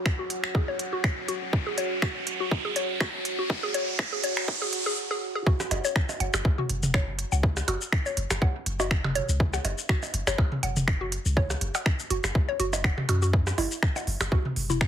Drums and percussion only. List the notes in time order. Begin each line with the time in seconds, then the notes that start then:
0.06 finger snap, kick
0.30 closed hi-hat
0.44 finger snap
0.55 kick
0.79 closed hi-hat
1.04 finger snap, kick
1.28 closed hi-hat
1.53 kick
1.78 closed hi-hat
2.02 finger snap, kick
2.27 closed hi-hat
2.51 kick
2.76 closed hi-hat
3.00 finger snap, kick
3.25 closed hi-hat
3.50 kick
3.74 closed hi-hat
3.99 finger snap, kick
4.24 closed hi-hat
4.37 finger snap
4.48 kick
4.73 closed hi-hat
5.47 kick
5.60 percussion blips, shaker
5.71 closed hi-hat, percussion blips
5.85 shaker
5.96 finger snap, kick
6.09 percussion blips, shaker
6.20 closed hi-hat
6.34 finger snap, percussion blips, shaker
6.45 kick
6.58 mid tom
6.69 closed hi-hat
6.83 mid tom, shaker
6.94 finger snap, kick
7.19 closed hi-hat
7.32 shaker
7.43 kick
7.57 percussion blips, shaker
7.68 closed hi-hat, percussion blips
7.81 shaker
7.92 finger snap, kick
8.06 shaker
8.17 closed hi-hat
8.31 finger snap, percussion blips, shaker
8.42 kick
8.66 closed hi-hat
8.80 percussion blips, shaker
8.91 finger snap, kick
9.04 mid tom, percussion blips
9.15 closed hi-hat
9.29 shaker
9.40 kick
9.54 percussion blips, shaker
9.65 closed hi-hat, percussion blips
9.78 shaker
9.89 finger snap, kick
10.03 percussion blips, shaker
10.14 closed hi-hat
10.27 finger snap, percussion blips, shaker
10.38 kick, percussion blips
10.52 mid tom
10.63 closed hi-hat
10.76 mid tom, shaker
10.88 finger snap, kick
11.12 closed hi-hat
11.26 shaker
11.37 kick
11.50 percussion blips, shaker
11.61 closed hi-hat
11.75 percussion blips, shaker
11.86 finger snap, kick
11.99 shaker
12.10 closed hi-hat
12.24 finger snap, percussion blips, shaker
12.35 kick
12.60 closed hi-hat
12.73 percussion blips, shaker
12.84 finger snap, kick
12.98 mid tom, percussion blips
13.09 closed hi-hat, percussion blips
13.22 shaker
13.33 kick
13.47 percussion blips, shaker
13.58 open hi-hat, percussion blips
13.71 shaker
13.83 finger snap, kick
13.96 percussion blips, shaker
14.07 open hi-hat
14.21 finger snap, percussion blips, shaker
14.32 kick
14.45 mid tom
14.56 open hi-hat
14.70 mid tom, shaker
14.81 finger snap, kick